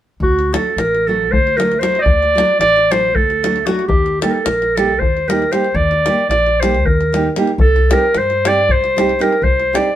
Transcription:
0.20 0.54 D2 medium
0.20 0.55 F#4 medium
0.20 davul low medium
0.39 davul high soft
0.52 0.67 F#3 soft
0.52 0.67 A3 medium
0.52 0.68 D4 soft
0.52 0.68 F#4 medium
0.52 0.80 A4 medium
0.52 davul high medium
0.76 1.32 A1 medium
0.76 1.08 A#4 medium
0.76 davul high medium
0.95 davul high soft
1.07 1.22 F#3 soft
1.07 1.23 A3 soft
1.07 1.23 D4 soft
1.07 1.23 F#4 medium
1.07 1.33 A4 medium
1.32 1.76 D2 medium
1.32 1.58 C5 medium
1.32 davul low medium
1.47 davul high soft
1.57 1.72 F#3 medium
1.57 1.73 A3 medium
1.57 1.73 D4 soft
1.57 1.74 F#4 medium
1.57 1.81 A#4 medium
1.57 davul high medium
1.72 davul high soft
1.79 1.96 F#3 medium
1.79 1.96 A3 soft
1.79 1.96 D4 medium
1.79 1.96 F#4 medium
1.79 1.98 C5 medium
1.79 davul high medium
1.95 2.03 D#5 medium
1.95 davul high soft
2.02 2.39 D2 medium
2.02 2.59 D5 loud
2.02 davul low medium
2.23 davul high soft
2.35 2.51 F#3 medium
2.35 2.51 A3 soft
2.35 2.51 D4 soft
2.35 2.52 F#4 medium
2.35 davul high medium
2.59 3.15 A1 medium
2.59 2.93 D5 loud
2.59 davul high medium
2.76 davul high soft
2.91 3.06 F#3 soft
2.91 3.06 A3 soft
2.91 3.07 D4 soft
2.91 3.07 F#4 medium
2.91 3.17 C5 medium
2.91 davul high medium
3.15 3.60 D2 medium
3.15 3.68 A4 medium
3.15 davul low medium
3.30 davul high soft
3.43 3.57 F#3 soft
3.43 3.58 A3 medium
3.43 3.58 D4 soft
3.43 3.58 F#4 medium
3.43 davul high medium
3.56 davul high soft
3.66 3.80 F#3 medium
3.66 3.81 A3 medium
3.66 3.81 D4 medium
3.66 3.87 F#4 medium
3.66 3.82 F#4 medium
3.66 davul high medium
3.79 davul high soft
3.88 4.22 D#2 medium
3.88 4.18 G4 medium
3.88 davul low medium
4.06 davul high soft
4.21 4.36 G3 medium
4.21 4.36 A#3 medium
4.21 4.36 D#4 soft
4.21 4.37 G4 medium
4.21 4.31 A4 medium
4.21 davul high medium
4.30 4.46 A4 medium
4.30 4.33 A#4 medium
4.44 5.00 A#1 medium
4.44 4.77 A#4 medium
4.44 davul high medium
4.62 davul high soft
4.76 4.91 G3 soft
4.76 4.91 A#3 soft
4.76 4.92 D#4 soft
4.76 4.92 G4 medium
4.76 5.00 A4 medium
4.76 davul high medium
4.99 5.45 D#2 medium
4.99 5.30 C5 medium
4.99 davul low medium
5.17 davul high soft
5.28 5.42 G3 medium
5.28 5.42 A#3 medium
5.28 5.43 D#4 medium
5.28 5.43 G4 medium
5.28 5.53 A#4 medium
5.28 davul high medium
5.42 davul high soft
5.52 5.65 G3 medium
5.52 5.66 A#3 medium
5.52 5.66 D#4 medium
5.52 5.66 G4 medium
5.52 5.77 C5 medium
5.52 davul high soft
5.64 davul high soft
5.75 6.08 D#2 medium
5.75 6.29 D5 medium
5.75 davul low medium
5.91 davul high soft
6.06 6.21 G3 medium
6.06 6.21 A#3 soft
6.06 6.21 D#4 soft
6.06 6.21 G4 medium
6.06 davul high medium
6.29 6.83 A#1 medium
6.29 6.62 D5 medium
6.29 davul high soft
6.47 davul high soft
6.60 6.76 G3 soft
6.60 6.76 A#3 soft
6.60 6.76 D#4 soft
6.60 6.77 G4 soft
6.60 6.87 C5 medium
6.60 davul high medium
6.75 davul high soft
6.83 7.28 D#2 medium
6.83 7.36 A#4 medium
6.83 davul low medium
7.01 davul high soft
7.12 7.26 G3 medium
7.12 7.27 A#3 soft
7.12 7.27 D#4 soft
7.12 7.27 G4 medium
7.12 davul high soft
7.36 7.50 G3 medium
7.36 7.50 A#3 medium
7.36 7.50 D#4 medium
7.36 7.50 G4 medium
7.36 davul high medium
7.47 davul high soft
7.58 7.92 C2 medium
7.58 7.94 A4 loud
7.58 davul low medium
7.76 davul high soft
7.89 8.04 G3 medium
7.89 8.04 C4 soft
7.89 8.05 D#4 soft
7.89 8.05 G4 medium
7.89 8.19 A#4 medium
7.89 davul high medium
8.15 8.71 G2 medium
8.15 8.49 C5 loud
8.15 davul high soft
8.30 davul high soft
8.45 8.59 G3 medium
8.45 8.60 C4 medium
8.45 8.60 D#4 soft
8.45 8.60 G4 medium
8.45 8.73 D5 medium
8.45 davul high medium
8.69 9.13 C2 medium
8.69 9.23 C5 medium
8.69 davul low medium
8.84 davul high soft
8.96 9.10 G3 medium
8.96 9.11 C4 soft
8.96 9.11 D#4 medium
8.96 9.11 G4 medium
8.96 davul high medium
9.09 davul high soft
9.19 9.33 G3 medium
9.19 9.33 C4 medium
9.19 9.33 D#4 medium
9.19 9.34 G4 medium
9.19 9.45 A#4 medium
9.19 davul high soft
9.32 davul high soft
9.42 9.75 C2 medium
9.42 9.77 C5 loud
9.42 davul low medium
9.60 davul high soft
9.73 9.88 G3 soft
9.73 9.88 C4 soft
9.73 9.88 D#4 soft
9.73 9.88 G4 medium
9.73 9.96 D5 medium
9.73 davul high medium

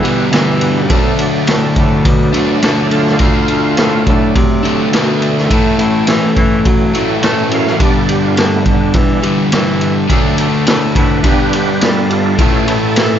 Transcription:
0.00 0.23 E3 medium
0.00 0.30 G3 medium
0.00 0.86 B3 medium
0.05 0.30 G2 medium
0.05 1.15 B2 medium
0.05 0.31 D3 medium
0.05 0.88 G3 loud
0.05 ride medium
0.31 0.87 G2 medium
0.31 0.87 D3 medium
0.31 0.92 E3 medium
0.31 0.89 G3 medium
0.31 snare loud
0.31 ride loud
0.61 ride medium
0.89 1.14 D2 medium
0.89 2.31 D3 medium
0.89 3.15 F#3 soft
0.89 2.34 A3 medium
0.89 3.16 A3 medium
0.89 3.16 D4 medium
0.89 2.31 D4 loud
0.89 kick loud
0.89 ride medium
1.19 ride medium
1.47 1.71 A2 medium
1.47 snare loud
1.47 ride loud
1.76 2.00 A2 medium
1.76 kick medium
1.76 ride medium
2.05 2.53 B2 medium
2.05 kick loud
2.05 ride medium
2.32 2.60 D3 medium
2.32 2.63 A3 medium
2.32 2.60 D4 medium
2.32 ride medium
2.61 3.18 D3 medium
2.61 2.86 D3 medium
2.61 3.20 A3 medium
2.61 3.19 D4 medium
2.61 snare loud
2.61 ride medium
2.87 3.15 D3 medium
2.87 2.91 E4 medium
2.91 4.03 F4 loud
2.91 ride medium
3.07 snare soft
3.19 3.44 D2 loud
3.19 4.61 D3 medium
3.19 4.62 A3 medium
3.19 4.62 D4 loud
3.19 kick loud
3.19 ride medium
3.48 3.73 D2 medium
3.48 ride medium
3.77 4.02 A2 medium
3.77 snare loud
3.77 ride medium
4.07 4.30 A2 medium
4.07 4.89 F#3 soft
4.07 4.34 A3 soft
4.07 4.36 D4 medium
4.07 kick medium
4.07 ride medium
4.35 4.83 C3 medium
4.35 4.63 A3 medium
4.35 kick loud
4.35 ride medium
4.63 4.91 D3 medium
4.63 4.91 A3 medium
4.63 5.76 A3 medium
4.63 4.90 D4 medium
4.63 ride medium
4.92 5.40 B2 medium
4.92 5.48 D3 medium
4.92 5.49 A3 medium
4.92 5.50 D4 medium
4.92 snare loud
4.92 ride medium
5.22 ride medium
5.38 snare soft
5.50 6.91 A2 medium
5.50 5.74 A2 medium
5.50 6.92 E3 loud
5.50 6.92 A3 loud
5.50 kick loud
5.50 ride loud
5.78 6.03 A2 medium
5.78 7.75 E3 medium
5.78 7.75 A3 soft
5.78 7.75 C#4 medium
5.78 ride medium
6.07 6.31 E3 medium
6.07 snare loud
6.07 ride loud
6.36 6.60 E3 medium
6.36 kick medium
6.36 ride medium
6.65 7.13 F#3 medium
6.65 kick loud
6.65 ride medium
6.93 7.21 A2 medium
6.93 7.21 E3 medium
6.93 7.20 A3 medium
6.93 ride medium
7.22 7.78 A2 medium
7.22 7.78 E3 medium
7.22 7.46 A3 medium
7.22 7.79 A3 medium
7.22 snare loud
7.22 ride medium
7.51 7.75 F#2 medium
7.51 7.79 F5 loud
7.51 ride medium
7.67 snare soft
7.79 9.21 G2 medium
7.79 8.04 G2 medium
7.79 9.22 D3 medium
7.79 8.94 G3 medium
7.79 9.21 G3 loud
7.79 8.66 B3 soft
7.79 8.38 D4 medium
7.79 7.94 D5 medium
7.79 kick loud
7.79 ride loud
7.97 8.09 A4 medium
8.09 8.22 G4 medium
8.09 ride medium
8.25 8.37 F4 medium
8.37 8.61 D3 medium
8.37 8.52 D4 loud
8.37 snare loud
8.37 ride medium
8.54 8.66 A3 medium
8.66 8.90 D3 medium
8.66 8.95 B3 loud
8.66 kick medium
8.66 ride medium
8.94 9.42 E3 medium
8.94 9.21 G3 soft
8.94 9.21 B3 soft
8.94 9.21 D4 medium
8.94 kick loud
8.94 ride medium
9.22 9.50 G2 medium
9.22 9.50 D3 medium
9.22 9.50 G3 medium
9.22 ride medium
9.51 10.07 G2 medium
9.51 10.06 D3 medium
9.51 10.00 E3 medium
9.51 10.08 G3 medium
9.51 snare loud
9.51 ride medium
9.81 ride medium
10.08 10.33 D2 medium
10.08 11.21 D3 medium
10.08 10.48 F#3 medium
10.08 11.22 A3 loud
10.08 10.48 A3 soft
10.08 11.23 D4 loud
10.08 kick loud
10.08 ride medium
10.12 10.49 D4 medium
10.38 10.62 D2 medium
10.38 ride medium
10.66 10.90 A2 medium
10.66 snare loud
10.66 ride loud
10.92 11.19 A2 medium
10.92 11.22 D4 medium
10.92 10.96 A#4 medium
10.92 kick medium
10.92 ride medium
10.96 11.24 B4 medium
11.23 12.37 G2 medium
11.23 11.72 G2 medium
11.23 12.37 D3 loud
11.23 12.35 G3 medium
11.23 12.38 G3 medium
11.23 12.36 B3 medium
11.23 12.36 D4 medium
11.23 11.52 G4 medium
11.23 11.53 B4 medium
11.23 kick loud
11.23 ride medium
11.53 11.80 G4 medium
11.53 11.81 B4 medium
11.53 ride medium
11.81 12.06 G3 medium
11.81 12.09 F4 medium
11.81 12.10 A4 medium
11.81 snare loud
11.81 ride loud
12.10 12.34 G2 medium
12.10 12.38 F4 medium
12.10 12.39 A4 medium
12.10 ride medium
12.38 13.19 A2 medium
12.38 12.62 A2 medium
12.38 13.19 E3 loud
12.38 12.78 E3 medium
12.38 12.78 A3 medium
12.38 13.19 A3 loud
12.38 12.78 C#4 medium
12.38 12.66 F4 medium
12.38 12.68 A4 medium
12.38 kick loud
12.38 ride loud
12.65 12.91 A2 medium
12.65 12.68 G#4 medium
12.65 ride medium
12.70 13.19 A4 loud
12.96 13.19 E3 medium
12.96 snare loud
12.96 ride loud

